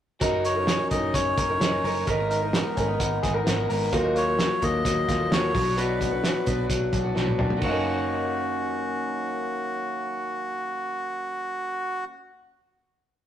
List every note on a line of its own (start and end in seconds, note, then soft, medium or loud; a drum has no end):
0.20 0.76 F#1 medium
0.20 0.55 F#3 medium
0.20 2.07 F#3 medium
0.20 0.56 C#4 medium
0.20 0.55 D#4 loud
0.20 1.37 A#4 medium
0.20 0.54 A#4 medium
0.20 kick medium
0.20 closed hi-hat medium
0.45 0.91 D#4 medium
0.45 0.88 C#5 medium
0.45 closed hi-hat medium
0.55 0.90 C#4 soft
0.55 0.91 D#4 soft
0.55 0.91 A#4 soft
0.67 1.14 C#4 medium
0.67 snare medium
0.67 closed hi-hat medium
0.90 1.10 F#1 medium
0.90 1.49 F#3 medium
0.90 1.49 C#4 medium
0.90 2.30 D#4 medium
0.90 1.50 D#4 medium
0.90 1.48 A#4 medium
0.90 1.15 D#5 medium
0.90 kick medium
0.90 closed hi-hat medium
1.14 1.33 F#1 medium
1.14 1.59 C#4 medium
1.14 2.10 C#5 medium
1.14 kick medium
1.14 closed hi-hat medium
1.38 1.57 F#1 medium
1.38 1.84 A#4 medium
1.38 kick medium
1.38 closed hi-hat medium
1.49 1.59 C#4 soft
1.49 1.60 D#4 soft
1.49 1.61 A#4 medium
1.60 1.80 F#1 medium
1.60 1.82 F#3 medium
1.60 1.83 C#4 medium
1.60 2.12 C#4 medium
1.60 1.84 D#4 medium
1.60 1.84 A#4 medium
1.60 snare medium
1.60 closed hi-hat medium
1.83 2.03 F#1 medium
1.83 2.07 F#3 medium
1.83 2.07 C#4 medium
1.83 2.08 D#4 medium
1.83 2.07 A#4 medium
1.83 2.08 A#4 medium
1.83 open hi-hat medium
2.06 2.63 G#1 medium
2.06 3.92 G#3 medium
2.06 2.42 G#3 medium
2.06 2.42 B3 medium
2.06 2.42 D#4 medium
2.06 2.28 A#4 medium
2.06 3.22 A#4 medium
2.06 2.41 A#4 medium
2.06 kick medium
2.06 closed hi-hat medium
2.29 2.76 D#4 medium
2.29 3.19 A#4 medium
2.29 closed hi-hat medium
2.43 2.77 B3 soft
2.43 2.77 D#4 soft
2.43 2.77 A#4 soft
2.53 2.98 B3 medium
2.53 snare medium
2.53 closed hi-hat medium
2.77 2.96 G#1 medium
2.77 3.35 G#3 medium
2.77 3.35 B3 medium
2.77 2.88 C#4 medium
2.77 3.35 D#4 medium
2.77 3.34 A#4 medium
2.77 kick medium
2.77 closed hi-hat medium
2.88 3.92 D#4 soft
2.99 3.19 G#1 medium
2.99 3.45 B3 medium
2.99 kick medium
2.99 closed hi-hat medium
3.23 3.43 G#1 medium
3.23 3.34 G#4 medium
3.23 kick medium
3.23 snare soft
3.23 closed hi-hat medium
3.34 3.46 B3 soft
3.34 3.46 D#4 soft
3.34 3.46 A#4 medium
3.34 3.68 A#4 medium
3.46 3.66 G#1 loud
3.46 3.68 G#3 medium
3.46 3.97 B3 medium
3.46 3.68 B3 medium
3.46 3.69 D#4 medium
3.46 3.70 A#4 medium
3.46 snare loud
3.46 closed hi-hat medium
3.69 3.89 G#1 medium
3.69 3.92 G#3 medium
3.69 3.93 B3 medium
3.69 3.93 D#4 medium
3.69 3.97 A#4 medium
3.69 3.93 A#4 medium
3.69 open hi-hat medium
3.92 4.48 D#2 medium
3.92 4.27 D#3 medium
3.92 4.38 F#3 medium
3.92 4.28 A#3 medium
3.92 5.07 F4 medium
3.92 4.27 F#4 medium
3.92 4.25 A#4 medium
3.92 kick medium
3.92 closed hi-hat medium
4.15 4.61 A#3 medium
4.15 4.64 C#5 medium
4.15 closed hi-hat medium
4.27 4.60 A#3 soft
4.27 4.61 F#4 soft
4.27 4.62 A#4 medium
4.39 4.85 F#3 medium
4.39 snare medium
4.39 closed hi-hat medium
4.61 4.81 D#2 medium
4.61 5.20 A#3 medium
4.61 5.59 A#3 medium
4.61 5.20 F#4 medium
4.61 5.18 A#4 medium
4.61 5.34 D#5 loud
4.61 kick medium
4.61 closed hi-hat medium
4.85 5.04 D#2 medium
4.85 5.31 F#3 medium
4.85 kick medium
4.85 closed hi-hat medium
5.08 5.27 D#2 loud
5.08 5.59 F4 medium
5.08 kick medium
5.08 snare soft
5.08 closed hi-hat medium
5.19 5.29 A#3 soft
5.19 5.30 F#4 soft
5.19 5.31 A#4 medium
5.30 5.50 D#2 medium
5.30 5.53 F3 medium
5.30 5.54 F#3 medium
5.30 5.54 A#3 medium
5.30 5.55 F#4 medium
5.30 5.55 A#4 medium
5.30 5.79 C#5 medium
5.30 snare loud
5.30 closed hi-hat medium
5.54 6.21 B1 medium
5.54 5.76 F#3 medium
5.54 5.77 F#3 medium
5.54 5.76 B3 medium
5.54 5.77 D4 medium
5.54 5.77 F#4 medium
5.54 kick medium
5.54 open hi-hat medium
5.77 6.12 B2 medium
5.77 6.12 F#3 medium
5.77 6.23 F#3 medium
5.77 6.12 B3 medium
5.77 6.91 D4 medium
5.77 6.11 D4 medium
5.77 6.10 F#4 medium
5.77 6.66 B4 medium
5.77 closed hi-hat medium
6.01 6.45 B3 medium
6.01 kick medium
6.01 closed hi-hat medium
6.11 6.46 B3 soft
6.11 6.46 D4 soft
6.11 6.46 F#4 medium
6.24 6.69 F#3 medium
6.24 snare medium
6.24 closed hi-hat medium
6.46 6.66 B1 medium
6.46 7.14 F#3 medium
6.46 7.65 B3 medium
6.46 7.04 B3 medium
6.46 7.04 D4 medium
6.46 7.03 F#4 medium
6.46 kick medium
6.46 closed hi-hat medium
6.69 6.89 B1 medium
6.69 7.15 F#3 medium
6.69 kick medium
6.69 closed hi-hat medium
6.93 7.12 B1 medium
6.93 7.37 D4 medium
6.93 kick medium
6.93 closed hi-hat medium
7.04 7.14 B3 soft
7.04 7.15 D4 medium
7.04 7.15 F#4 medium
7.15 7.35 B1 medium
7.15 7.37 F#3 medium
7.15 7.58 F#3 medium
7.15 7.38 B3 medium
7.15 7.38 D4 medium
7.15 7.39 F#4 medium
7.15 snare medium
7.28 high tom medium
7.38 7.58 B1 medium
7.38 7.56 F#3 medium
7.38 7.62 B3 medium
7.38 7.66 D4 medium
7.38 7.62 D4 medium
7.38 7.63 F#4 medium
7.38 mid tom medium
7.50 floor tom medium
7.57 12.07 D#3 medium
7.57 12.05 F#3 medium
7.61 12.06 F#1 medium
7.61 12.13 A#3 medium
7.61 12.11 C#4 medium
7.61 12.05 F#4 medium
7.61 kick medium
7.61 crash medium
7.68 12.19 C#4 medium
7.68 12.16 D#4 medium
7.72 12.20 A#4 medium